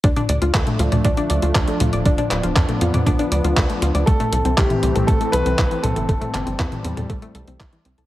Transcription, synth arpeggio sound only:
X:1
M:4/4
L:1/16
Q:1/4=119
K:Ddor
V:1 name="Synth arpeggio sound"
D D d F A A, F d D D d F A A, F d | D D d F A A, F d D D d F A A, F d | A, A, A C E E, C A A, A, A C E E, C A | A, A, A C E E, C A A, A, A C E E, C A |]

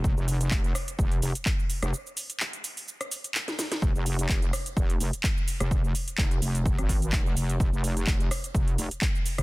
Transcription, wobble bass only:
X:1
M:4/4
L:1/16
Q:"Swing 16ths" 1/4=127
K:Fm
V:1 name="Wobble bass" clef=bass
F,,, F,,,3 F,,,2 z2 F,,,2 F,,, z4 F,,, | z16 | F,,, F,,,3 F,,,2 z2 F,,,2 F,,, z4 F,,,- | F,,,2 z2 F,,,2 F,,,3 A,,,3 F,,,2 F,,,2 |
F,,, F,,,3 F,,,2 z2 F,,,2 F,,, z4 F,,, |]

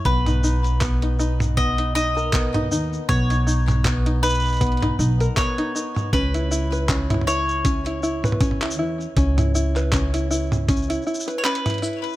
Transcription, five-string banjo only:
X:1
M:4/4
L:1/16
Q:"Swing 16ths" 1/4=79
K:C#dor
V:1 name="Five-string banjo"
B, D D2 B, D D2 B, D D A B, D D2 | B, D D2 B, D D2 B, D D A B, D D2 | C E E B C E E2 C E E B C E E2 | C E E B C E E2 C E E B C E E2 |]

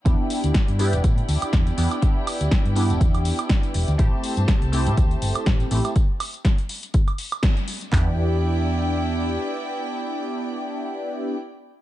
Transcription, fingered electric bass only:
X:1
M:4/4
L:1/16
Q:"Swing 16ths" 1/4=122
K:Em
V:1 name="Fingered electric bass" clef=bass
E,, z2 D,, z G,,2 E,,, A,, z D,, z E,, z E,, z | z3 D,, z G,,2 E,,, E,,2 z4 E,,, D,, | z3 G,, z C,,2 A,, D,, z G,,, z A,,, z A,,, z | z16 |
E,,12 z4 | z16 |]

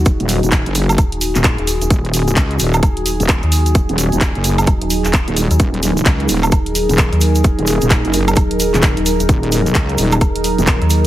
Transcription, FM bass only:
X:1
M:4/4
L:1/16
Q:"Swing 16ths" 1/4=130
K:Ebm
V:1 name="FM bass" clef=bass
E,,, z6 z E,,,3 z2 E,,,2 E,,, | z8 E,,,3 z2 E,,3 | E,,, z6 z E,,, E,,,2 E,,,2 z2 E,, | z8 E,,,3 z2 E,,3 |
E,,, z6 z E,,,3 z2 E,,,2 E,,, | z8 E,,,3 z2 E,,3 |]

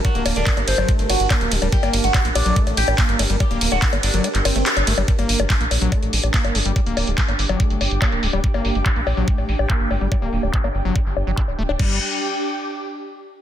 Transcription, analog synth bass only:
X:1
M:4/4
L:1/16
Q:1/4=143
K:Gm
V:1 name="Analog synth bass" clef=bass
z D,,, D,,, D,,, z G,,, G,,, G,,, z G,,, G,,, G,,, z D,,, D,,, D,,, | z G,,, G,,, G,,, z B,,, B,,, B,,, z A,,, A,,, A,,, z G,,, G,,, G,,, | z D,,, D,,, D,,, z G,,, G,,, G,,, z G,,, G,,, G,,, z G,,, G,,, G,,, | z G,,, G,,, G,,, z B,,, B,,, B,,, z A,,, A,,, A,,, z G,,, G,,, G,,, |
z D,,, D,,, D,,, z G,,, G,,, G,,, z G,,, G,,, G,,, z D,,, D,,, D,,, | z G,,, G,,, G,,, z B,,, B,,, B,,, z A,,, A,,, A,,, z G,,, G,,, G,,, | z D,,, D,,, D,,, z G,,, G,,, G,,, z G,,, G,,, G,,, z D,,, D,,, D,,, | G,,,2 z12 z2 |]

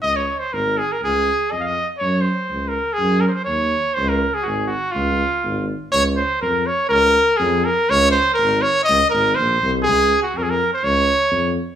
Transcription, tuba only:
X:1
M:2/4
L:1/8
Q:"Swing 16ths" 1/4=122
K:Db
V:1 name="Tuba" clef=bass
D,,2 A,,,2 | D,,2 F,,2 | G,,2 D,,2 | G,,2 E,,2 |
D,,2 A,,,2 | D,,2 A,,,2 | D,,2 F,,2 | D,,2 F,,2 |
D,,2 A,,,2 | D,, A,,, B,,, C,, | D,,2 F,,2 | D,,2 F,,2 |]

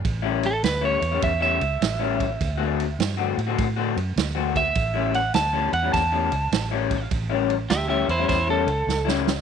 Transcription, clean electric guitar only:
X:1
M:4/4
L:1/16
Q:"Swing" 1/4=102
K:Amix
V:1 name="Clean electric guitar"
z [A,,G,CE] z3 [A,,G,CE] z [A,,G,CE] z [A,,G,CE] z3 [A,,G,CE] z2 | z [D,A,=CF] z3 [D,A,CF] z [D,A,CF] z [D,A,CF] z3 [D,A,CF] z2 | z [A,,G,CE] z3 [A,,G,CE] z [A,,G,CE] z [A,,G,CE] z3 [A,,G,CE] z2 | z [A,,G,CE] z3 [A,,G,CE] z [A,,G,CE] z [A,,G,CE] z3 [A,,G,CE] z2 |]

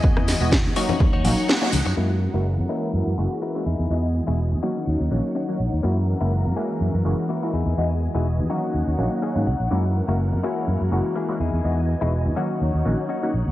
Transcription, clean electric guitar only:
X:1
M:4/4
L:1/16
Q:"Swing 16ths" 1/4=124
K:F#mix
V:1 name="Clean electric guitar"
[EGd]4 z2 [DFc]2 z [DFc] z6 | [EFA] z2 [EFA] z2 [EFA]3 z3 [EFA]2 [DEG]2- | [DEG] z2 [DEG] z2 [CDF]4- [CDF] z [CDF]2 z2 | [A,EF] z2 [A,EF] z2 [A,EG]3 z3 [A,EF]2 [DEG]2- |
[DEG] z2 [DEG] z2 [CDF]4- [CDF] z [CDGd]2 f2 | [A,EF] z2 [A,EF] z2 [A,EF]3 z3 [A,EG]2 [DEG]2- | [DEG] z2 [DEG] z2 [CDF]4- [CDF] z [CDF]2 z2 |]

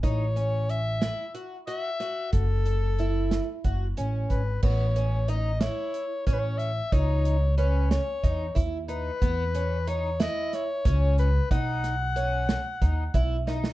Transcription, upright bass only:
X:1
M:7/8
L:1/8
Q:1/4=92
K:Alyd
V:1 name="Upright bass" clef=bass
A,,,4 z3 | F,,,4 F,,, A,,, G,,, | A,,,4 z A,,,2 | C,,4 E,, D,,2 |
E,,4 z C,,2 | B,,,4 D,, B,,,2 |]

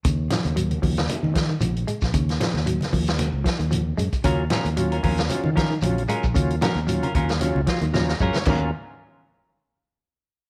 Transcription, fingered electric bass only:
X:1
M:4/4
L:1/16
Q:"Swing 16ths" 1/4=114
K:Ebm
V:1 name="Fingered electric bass" clef=bass
E,,2 z E,,3 E,,2 z E,3 B,,,2 z B,,, | E,,2 z E,,2 z E,,3 D,, z E,,3 G,, z | E,,2 z E,,3 E,,2 z E,3 B,,,2 z B,,, | E,,2 z E,,2 z E,,3 D,, z E,,3 G,, z |
E,,2 z12 z2 |]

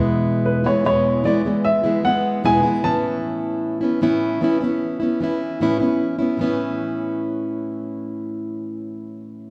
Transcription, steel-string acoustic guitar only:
X:1
M:4/4
L:1/16
Q:1/4=76
K:A
V:1 name="Steel-string acoustic guitar"
[E,,B,,E,G,B,E]3 [E,G,B,E] [E,,B,,E,G,B,E]2 [E,G,B,E] [E,G,B,E]2 [E,G,B,E] [E,G,B,E]2 [E,,B,,E,G,B,E] [E,G,B,E] [A,,E,B,CE]2- | [A,,E,B,CE]3 [B,CE] [A,,E,B,CE]2 [E,B,CE] [B,CE]2 [B,CE] [E,B,CE]2 [A,,E,B,CE] [B,CE]2 [B,CE] | [A,,E,B,CE]16 |]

